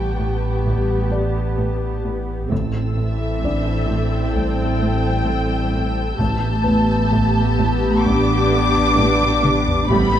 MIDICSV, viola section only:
0, 0, Header, 1, 2, 480
1, 0, Start_track
1, 0, Tempo, 924499
1, 1304, Time_signature, 4, 2, 24, 8
1, 5293, End_track
2, 0, Start_track
2, 0, Title_t, "Viola section"
2, 0, Program_c, 0, 48
2, 0, Note_on_c, 0, 59, 46
2, 0, Note_on_c, 0, 67, 50
2, 1280, Note_off_c, 0, 59, 0
2, 1280, Note_off_c, 0, 67, 0
2, 1303, Note_on_c, 0, 60, 52
2, 1303, Note_on_c, 0, 69, 51
2, 3193, Note_off_c, 0, 60, 0
2, 3193, Note_off_c, 0, 69, 0
2, 3213, Note_on_c, 0, 67, 63
2, 3214, Note_on_c, 0, 59, 60
2, 5120, Note_off_c, 0, 59, 0
2, 5120, Note_off_c, 0, 67, 0
2, 5132, Note_on_c, 0, 55, 75
2, 5132, Note_on_c, 0, 67, 65
2, 5248, Note_off_c, 0, 55, 0
2, 5252, Note_on_c, 0, 57, 50
2, 5293, Note_off_c, 0, 57, 0
2, 5293, Note_off_c, 0, 67, 0
2, 5293, End_track
0, 0, End_of_file